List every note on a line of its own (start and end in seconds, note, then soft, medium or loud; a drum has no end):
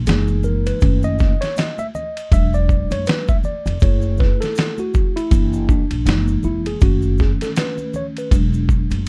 0.06 0.70 F#1 medium
0.06 0.78 E3 medium
0.06 0.78 G#3 medium
0.06 0.78 A#3 soft
0.06 0.79 D#4 medium
0.06 0.46 G#4 medium
0.06 snare loud
0.06 hi-hat pedal medium
0.06 ride medium
0.06 maracas medium
0.28 high conga medium
0.28 maracas soft
0.43 0.67 A#4 medium
0.43 low conga medium
0.43 maracas soft
0.66 1.01 B4 medium
0.66 ride medium
0.66 maracas soft
0.81 1.32 F#1 loud
0.81 1.34 D#3 medium
0.81 1.34 A3 soft
0.81 1.34 C#4 medium
0.81 kick loud
0.81 ride medium
0.81 maracas medium
1.03 1.43 D#5 loud
1.03 maracas soft
1.19 kick medium
1.19 snare soft
1.19 low conga medium
1.19 maracas soft
1.41 1.57 C#5 loud
1.41 snare soft
1.41 ride medium
1.41 maracas medium
1.56 1.80 D#5 medium
1.56 snare medium
1.56 hi-hat pedal medium
1.56 ride medium
1.56 high conga soft
1.56 maracas medium
1.78 1.86 E5 loud
1.78 high conga medium
1.78 maracas soft
1.95 2.33 D#5 loud
1.95 low conga medium
1.95 maracas medium
2.17 ride medium
2.17 maracas soft
2.31 2.81 E1 loud
2.31 3.41 F#3 medium
2.31 3.41 G#3 soft
2.31 3.41 D4 medium
2.31 2.55 E5 loud
2.31 kick medium
2.31 ride medium
2.31 maracas medium
2.54 2.93 D5 loud
2.54 maracas soft
2.69 kick medium
2.69 maracas soft
2.91 3.04 F#1 medium
2.91 3.08 C#5 medium
2.91 ride medium
2.91 high conga medium
2.91 maracas soft
3.06 3.27 B4 medium
3.06 snare loud
3.06 hi-hat pedal medium
3.06 ride medium
3.06 maracas medium
3.28 3.36 E5 medium
3.28 kick medium
3.28 high conga medium
3.28 maracas soft
3.44 3.83 D5 medium
3.44 high conga soft
3.44 low conga medium
3.44 maracas soft
3.66 3.79 F1 medium
3.66 ride medium
3.66 maracas soft
3.80 4.32 F#1 medium
3.80 5.28 A3 soft
3.80 5.15 E4 medium
3.80 5.28 G#4 medium
3.80 4.21 C#5 medium
3.80 kick loud
3.80 ride medium
3.80 maracas medium
4.02 maracas soft
4.17 4.42 B4 medium
4.17 kick medium
4.17 low conga medium
4.17 maracas soft
4.22 snare soft
4.41 4.79 A4 medium
4.41 snare soft
4.41 ride medium
4.41 maracas medium
4.55 snare medium
4.55 hi-hat pedal medium
4.55 ride medium
4.55 maracas medium
4.78 5.18 F#4 medium
4.78 high conga medium
4.78 maracas soft
4.94 kick medium
4.94 low conga medium
4.94 maracas soft
5.16 5.71 E4 medium
5.16 ride medium
5.16 maracas soft
5.30 5.81 F#1 loud
5.30 5.83 E3 medium
5.30 5.84 A#3 medium
5.30 5.68 D4 medium
5.30 kick medium
5.30 ride medium
5.30 maracas medium
5.53 maracas soft
5.69 6.08 D4 medium
5.69 kick medium
5.69 maracas soft
5.91 6.04 A#1 medium
5.91 ride medium
5.91 high conga medium
5.91 maracas soft
6.06 6.37 F#1 loud
6.06 6.78 E3 medium
6.06 6.78 G#3 soft
6.06 6.78 A#3 medium
6.06 6.46 D#4 medium
6.06 snare loud
6.06 hi-hat pedal medium
6.06 ride medium
6.06 maracas medium
6.27 high conga medium
6.27 maracas soft
6.43 6.75 F1 medium
6.43 6.67 E4 medium
6.43 low conga medium
6.43 maracas soft
6.66 6.81 G#4 medium
6.66 ride medium
6.66 maracas soft
6.80 7.31 F#1 loud
6.80 8.28 D#3 medium
6.80 8.28 A3 soft
6.80 8.28 C#4 medium
6.80 7.21 F#4 medium
6.80 kick loud
6.80 ride medium
6.80 maracas medium
7.02 maracas soft
7.18 7.30 G#4 medium
7.18 kick medium
7.18 snare soft
7.18 low conga medium
7.18 maracas soft
7.41 7.49 A4 medium
7.41 snare soft
7.41 ride medium
7.41 maracas medium
7.56 7.96 B4 medium
7.56 snare medium
7.56 hi-hat pedal medium
7.56 ride medium
7.56 maracas medium
7.78 high conga medium
7.78 maracas soft
7.94 8.05 C#5 medium
7.94 low conga medium
7.94 maracas soft
8.17 8.35 B4 medium
8.17 ride soft
8.17 maracas soft
8.31 8.81 E1 loud
8.31 9.09 F#3 medium
8.31 9.09 G#3 medium
8.31 9.09 D4 medium
8.31 kick medium
8.31 ride medium
8.31 maracas medium
8.53 maracas medium
8.69 kick medium
8.69 maracas soft
8.90 9.04 F#1 medium
8.90 ride medium
8.90 high conga medium
8.90 maracas soft